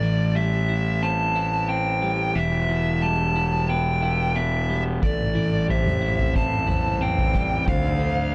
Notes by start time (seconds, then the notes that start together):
Already playing: A1 A2 D5
0.03 E3
0.36 G3 E5
0.69 E4
1.03 C4 A5
1.36 E4
1.69 C4 G5
2.02 G3
2.35 E1 E3 E5
2.68 E3
3.02 G3 A5
3.36 E4
3.70 B3 G5
4.02 E4
4.36 B3 E5
4.69 G3
5.01 A1 A2 G3 C4 A4 D5, kick, floor tom
5.35 E3
5.68 G3 C5 E5, floor tom
5.86 mid tom
6.02 E4
6.19 floor tom
6.34 C4 E5 A5, kick
6.67 E4 C5, floor tom, mid tom
7.01 C4 G5
7.18 floor tom
7.34 G3 D5, kick
7.67 D2 D3 F3 D4 A4 C5 F5, kick, floor tom
8.00 D3